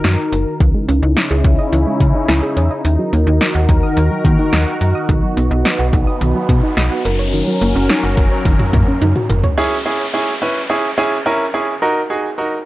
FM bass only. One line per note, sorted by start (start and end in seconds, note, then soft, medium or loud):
0.04 0.17 F#2 medium
0.32 0.45 F#1 loud
0.60 0.73 C#2 loud
0.88 1.01 C#2 loud
1.03 1.15 C#2 medium
1.31 1.43 C#2 loud
1.45 1.57 C#2 loud
1.73 1.85 C#2 loud
2.00 2.13 C#3 medium
2.29 2.41 C#2 loud
2.57 2.69 E2 medium
2.85 2.97 D#2 loud
3.13 3.25 D#2 medium
3.27 3.39 D#2 loud
3.55 3.67 D#2 medium
3.69 3.81 D#2 loud
3.97 4.09 D#2 loud
4.25 4.37 D#3 loud
4.53 4.66 D#2 loud
4.81 4.94 F#2 medium
5.09 5.22 B1 loud
5.37 5.50 B1 loud
5.51 5.64 B1 loud
5.79 5.92 B1 medium
5.93 6.06 B1 loud
6.21 6.34 B1 loud
6.49 6.62 B2 loud
6.77 6.90 B1 loud
7.05 7.43 F#1 medium
7.61 7.74 F#1 loud
7.75 7.88 F#1 loud
8.03 8.16 F#1 loud
8.17 8.30 F#1 loud
8.45 8.58 F#1 loud
8.73 8.86 F#2 medium
9.02 9.14 F#2 loud
9.30 9.42 F#1 medium